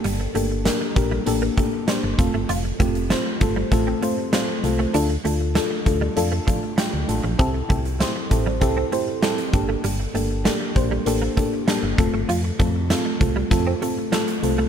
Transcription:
<<
  \new Staff \with { instrumentName = "FM electric piano" } { \time 4/4 \key g \dorian \tempo 4 = 98 <bes d' g' a'>8 <bes d' g' a'>8 <bes d' g' bes'>8 <bes d' g' bes'>8 <bes d' g' a'>8 <bes d' g' a'>8 <bes d' g' c''>8 <a c' f' a'>8~ | <a c' f' a'>8 <a c' f' g'>8 <a c' f' c''>8 <a c' f' a'>8 <a c' f' a'>8 <a c' f' c''>8 <a c' f' c''>8 <a c' f' a'>8 | <a d' f' a'>8 <a d' f' a'>8 <a d' f' a'>8 <a d' f' a'>8 <a d' f' a'>8 <a d' f' a'>8 <a d' f' g'>8 <a d' f' a'>8 | <c' e' g' a'>8 <c' e' g' a'>8 <c' e' g' c''>8 <c' e' g' a'>8 <c' e' g' a'>8 <c' e' g' c''>8 <c' e' g' a'>8 <bes d' g' a'>8~ |
<bes d' g' a'>8 <bes d' g' a'>8 <bes d' g' a'>8 <bes d' g' c''>8 <bes d' g' a'>8 <bes d' g' a'>8 <bes d' g' a'>8 <a c' f' a'>8~ | <a c' f' a'>8 <a c' f' a'>8 <a c' f' a'>8 <a c' f' a'>8 <a c' f' a'>8 <a c' f' a'>8 <a c' f' a'>8 <a c' f' a'>8 | }
  \new Staff \with { instrumentName = "Clean electric guitar" } { \time 4/4 \key g \dorian g16 r16 a16 r16 a16 r8 g16 r16 bes16 a16 r16 g16 r8 a16 | f'16 r16 a16 r16 a16 r8 g16 r16 c'16 a16 r16 g16 r8 a16 | d'16 r16 a16 r16 a16 r8 g16 r16 a16 f16 r16 g16 r8 f16 | c'16 r16 a16 r16 a16 r8 g16 r16 c'16 a16 r16 g16 r8 a16 |
g16 r16 a16 r16 a16 r8 g16 r16 bes16 a16 r16 g16 r8 a16 | f'16 r16 a16 r16 a16 r8 g16 r16 c'16 a16 r16 g16 r8 a16 | }
  \new Staff \with { instrumentName = "FM bass" } { \clef bass \time 4/4 \key g \dorian g,,8 g,,8. r16 bes,,8 a,,8 r8. g,,16 f,,16 g,,16 | f,,8 f,,8. r16 g,,8 a,,8 r4 c,8 | d,8 d,8. r16 d,8 f,8 r8. d,16 a,,16 bes,,16 | c,8 c,8. r16 a,,8 c,8 r4 g,,8 |
g,,8 g,,8. r16 bes,,8 a,,8 r8. g,,16 f,,16 g,,16 | f,8 f,8. r16 c,8 f,8 r4 c,8 | }
  \new DrumStaff \with { instrumentName = "Drums" } \drummode { \time 4/4 hh8 hh8 <hh sn>8 <hh bd>8 hh8 <hh bd>8 <hh sn>8 <hh bd>8 | hh8 <hh bd>16 hh16 <hh sn>8 <hh bd>8 <hh bd>8 hh8 <hh sn>8 hh8 | hh8 hh8 <hh sn>8 <hh bd>8 hh8 <hh bd>8 <hh sn>8 hh8 | <hh bd>8 <hh bd>16 hh16 <hh sn>8 <hh bd>8 <hh bd>8 hh8 <hh sn>16 hh16 <hh bd>8 |
hh8 hh8 <hh sn>8 <hh bd>8 hh8 <hh bd>8 <hh sn>8 <hh bd>8 | hh8 <hh bd>8 <hh sn>8 <hh bd>8 <hh bd>8 hh8 <hh sn>16 hh16 hh8 | }
>>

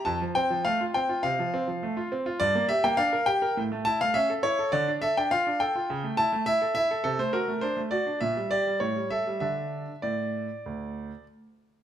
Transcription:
\new Staff \with { instrumentName = "Grand piano" } { \time 4/4 \key d \minor \tempo 4 = 103 << { a''8 g''8 f''8 g''8 f''4. r8 | d''8 e''16 g''16 f''8 g''4 a''16 f''16 e''8 cis''8 | d''8 e''16 g''16 f''8 g''4 a''8 e''8 e''8 | a'16 c''16 bes'8 c''8 d''8 e''8 d''8 cis''8 e''8 |
e''4 d''2 r4 | } \\ { f,16 f16 c'16 f16 a16 f'16 c'16 f'16 c16 f16 c'16 f16 a16 f'16 c'16 f'16 | g,16 bes16 g'16 bes16 d'16 bes'16 g'16 bes'16 a,16 a16 e'16 a16 cis'16 a'16 e'16 a'16 | d16 d'16 a'16 d'16 f'16 d'16 a'16 f'16 cis16 a16 e'16 a16 e'16 a'16 e'16 a'16 | c16 a16 fis'16 a16 d'16 a16 fis'16 d'16 bes,16 g16 g'16 g16 a,16 g16 a'16 g16 |
<d d' a'>4 a,4 d,4 r4 | } >> }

